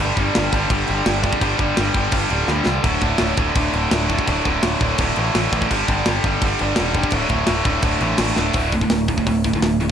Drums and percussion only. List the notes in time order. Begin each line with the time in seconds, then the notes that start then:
0.17 kick, crash
0.35 snare, crash
0.53 kick, crash
0.70 kick, crash
0.88 crash
1.06 snare, crash
1.24 kick, crash
1.33 kick
1.41 kick, crash
1.59 kick, crash
1.77 snare, crash
1.94 kick, crash
2.12 kick, crash
2.30 crash
2.48 snare
2.66 snare
2.84 kick, crash
3.01 kick, crash
3.18 snare, crash
3.37 kick, crash
3.55 kick, crash
3.73 crash
3.91 snare, crash
4.10 kick, crash
4.19 kick
4.28 kick, crash
4.45 kick, crash
4.63 snare, crash
4.80 kick, crash
4.98 kick, crash
5.16 crash
5.35 snare, crash
5.52 kick, crash
5.62 kick
5.71 kick, crash
5.88 kick, crash
6.06 snare, crash
6.24 kick, crash
6.41 kick, crash
6.59 crash
6.76 snare, crash
6.94 kick, crash
7.03 kick
7.10 kick, crash
7.29 kick, crash
7.47 snare, crash
7.65 kick, crash
7.82 kick, crash
8.01 crash
8.18 snare, crash
8.36 snare
8.53 kick, open hi-hat
8.72 kick, open hi-hat
8.81 kick
8.90 snare, open hi-hat
9.08 kick, open hi-hat
9.18 kick
9.27 kick, open hi-hat
9.44 kick, open hi-hat
9.53 kick
9.62 snare, open hi-hat
9.80 open hi-hat